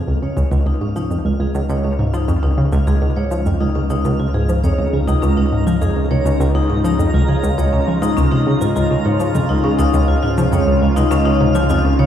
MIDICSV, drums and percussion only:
0, 0, Header, 1, 2, 480
1, 0, Start_track
1, 0, Key_signature, -5, "major"
1, 0, Tempo, 588235
1, 1385, Time_signature, 4, 2, 24, 8
1, 9842, End_track
2, 0, Start_track
2, 0, Title_t, "Drums"
2, 304, Note_on_c, 9, 69, 59
2, 386, Note_off_c, 9, 69, 0
2, 424, Note_on_c, 9, 48, 42
2, 424, Note_on_c, 9, 69, 48
2, 505, Note_off_c, 9, 48, 0
2, 505, Note_off_c, 9, 69, 0
2, 784, Note_on_c, 9, 48, 72
2, 784, Note_on_c, 9, 69, 57
2, 865, Note_off_c, 9, 48, 0
2, 865, Note_off_c, 9, 69, 0
2, 905, Note_on_c, 9, 69, 48
2, 986, Note_off_c, 9, 69, 0
2, 1264, Note_on_c, 9, 48, 42
2, 1264, Note_on_c, 9, 69, 59
2, 1345, Note_off_c, 9, 48, 0
2, 1345, Note_off_c, 9, 69, 0
2, 1383, Note_on_c, 9, 69, 50
2, 1464, Note_off_c, 9, 69, 0
2, 1624, Note_on_c, 9, 48, 73
2, 1705, Note_off_c, 9, 48, 0
2, 1744, Note_on_c, 9, 69, 59
2, 1825, Note_off_c, 9, 69, 0
2, 1864, Note_on_c, 9, 69, 49
2, 1945, Note_off_c, 9, 69, 0
2, 2103, Note_on_c, 9, 48, 43
2, 2184, Note_off_c, 9, 48, 0
2, 2222, Note_on_c, 9, 69, 60
2, 2304, Note_off_c, 9, 69, 0
2, 2343, Note_on_c, 9, 69, 50
2, 2425, Note_off_c, 9, 69, 0
2, 2464, Note_on_c, 9, 48, 73
2, 2546, Note_off_c, 9, 48, 0
2, 2702, Note_on_c, 9, 69, 60
2, 2784, Note_off_c, 9, 69, 0
2, 2823, Note_on_c, 9, 69, 49
2, 2904, Note_off_c, 9, 69, 0
2, 2943, Note_on_c, 9, 48, 42
2, 3025, Note_off_c, 9, 48, 0
2, 3184, Note_on_c, 9, 69, 62
2, 3265, Note_off_c, 9, 69, 0
2, 3304, Note_on_c, 9, 48, 73
2, 3304, Note_on_c, 9, 69, 52
2, 3386, Note_off_c, 9, 48, 0
2, 3386, Note_off_c, 9, 69, 0
2, 3664, Note_on_c, 9, 69, 60
2, 3745, Note_off_c, 9, 69, 0
2, 3785, Note_on_c, 9, 48, 40
2, 3785, Note_on_c, 9, 69, 51
2, 3866, Note_off_c, 9, 48, 0
2, 3866, Note_off_c, 9, 69, 0
2, 4146, Note_on_c, 9, 48, 71
2, 4146, Note_on_c, 9, 69, 63
2, 4228, Note_off_c, 9, 48, 0
2, 4228, Note_off_c, 9, 69, 0
2, 4267, Note_on_c, 9, 69, 51
2, 4349, Note_off_c, 9, 69, 0
2, 4628, Note_on_c, 9, 48, 40
2, 4628, Note_on_c, 9, 69, 61
2, 4710, Note_off_c, 9, 48, 0
2, 4710, Note_off_c, 9, 69, 0
2, 4747, Note_on_c, 9, 69, 50
2, 4828, Note_off_c, 9, 69, 0
2, 4987, Note_on_c, 9, 48, 75
2, 5068, Note_off_c, 9, 48, 0
2, 5108, Note_on_c, 9, 69, 62
2, 5190, Note_off_c, 9, 69, 0
2, 5228, Note_on_c, 9, 69, 51
2, 5310, Note_off_c, 9, 69, 0
2, 5467, Note_on_c, 9, 48, 40
2, 5549, Note_off_c, 9, 48, 0
2, 5588, Note_on_c, 9, 69, 59
2, 5670, Note_off_c, 9, 69, 0
2, 5709, Note_on_c, 9, 69, 50
2, 5791, Note_off_c, 9, 69, 0
2, 5829, Note_on_c, 9, 48, 74
2, 5911, Note_off_c, 9, 48, 0
2, 6069, Note_on_c, 9, 69, 60
2, 6150, Note_off_c, 9, 69, 0
2, 6190, Note_on_c, 9, 69, 50
2, 6272, Note_off_c, 9, 69, 0
2, 6312, Note_on_c, 9, 48, 41
2, 6394, Note_off_c, 9, 48, 0
2, 6549, Note_on_c, 9, 69, 61
2, 6631, Note_off_c, 9, 69, 0
2, 6670, Note_on_c, 9, 48, 71
2, 6670, Note_on_c, 9, 69, 51
2, 6751, Note_off_c, 9, 48, 0
2, 6751, Note_off_c, 9, 69, 0
2, 7029, Note_on_c, 9, 69, 62
2, 7110, Note_off_c, 9, 69, 0
2, 7149, Note_on_c, 9, 69, 49
2, 7231, Note_off_c, 9, 69, 0
2, 7268, Note_on_c, 9, 48, 39
2, 7349, Note_off_c, 9, 48, 0
2, 7508, Note_on_c, 9, 69, 57
2, 7589, Note_off_c, 9, 69, 0
2, 7629, Note_on_c, 9, 48, 68
2, 7629, Note_on_c, 9, 69, 48
2, 7711, Note_off_c, 9, 48, 0
2, 7711, Note_off_c, 9, 69, 0
2, 7989, Note_on_c, 9, 69, 62
2, 8070, Note_off_c, 9, 69, 0
2, 8109, Note_on_c, 9, 48, 39
2, 8109, Note_on_c, 9, 69, 49
2, 8190, Note_off_c, 9, 48, 0
2, 8190, Note_off_c, 9, 69, 0
2, 8470, Note_on_c, 9, 48, 67
2, 8470, Note_on_c, 9, 69, 60
2, 8551, Note_off_c, 9, 48, 0
2, 8551, Note_off_c, 9, 69, 0
2, 8590, Note_on_c, 9, 69, 48
2, 8672, Note_off_c, 9, 69, 0
2, 8950, Note_on_c, 9, 48, 39
2, 8950, Note_on_c, 9, 69, 58
2, 9031, Note_off_c, 9, 48, 0
2, 9031, Note_off_c, 9, 69, 0
2, 9067, Note_on_c, 9, 69, 50
2, 9149, Note_off_c, 9, 69, 0
2, 9307, Note_on_c, 9, 48, 66
2, 9388, Note_off_c, 9, 48, 0
2, 9425, Note_on_c, 9, 69, 56
2, 9507, Note_off_c, 9, 69, 0
2, 9544, Note_on_c, 9, 69, 45
2, 9625, Note_off_c, 9, 69, 0
2, 9783, Note_on_c, 9, 48, 40
2, 9842, Note_off_c, 9, 48, 0
2, 9842, End_track
0, 0, End_of_file